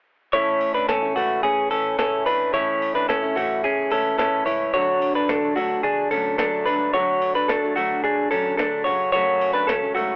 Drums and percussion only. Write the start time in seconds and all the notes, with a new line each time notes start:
0.33 kick, closed hi-hat
0.61 open hi-hat
0.89 kick, snare, closed hi-hat
1.17 open hi-hat
1.44 kick, closed hi-hat
1.71 open hi-hat
1.99 kick, snare, closed hi-hat
2.27 open hi-hat
2.54 kick, closed hi-hat
2.82 open hi-hat
3.10 kick, snare, closed hi-hat
3.37 open hi-hat
3.64 kick, closed hi-hat
3.91 open hi-hat
4.19 kick, snare, closed hi-hat
4.47 open hi-hat
4.74 kick, closed hi-hat
5.02 open hi-hat
5.29 kick, snare, closed hi-hat
5.57 open hi-hat
5.84 kick, closed hi-hat
6.11 open hi-hat
6.39 kick, snare, closed hi-hat
6.67 open hi-hat
6.94 kick, closed hi-hat
7.22 open hi-hat
7.49 kick, snare, closed hi-hat
7.77 open hi-hat
8.04 kick, closed hi-hat
8.32 open hi-hat
8.59 kick, snare, closed hi-hat
8.87 kick, open hi-hat
9.14 closed hi-hat
9.41 open hi-hat
9.69 kick, snare, closed hi-hat
9.97 open hi-hat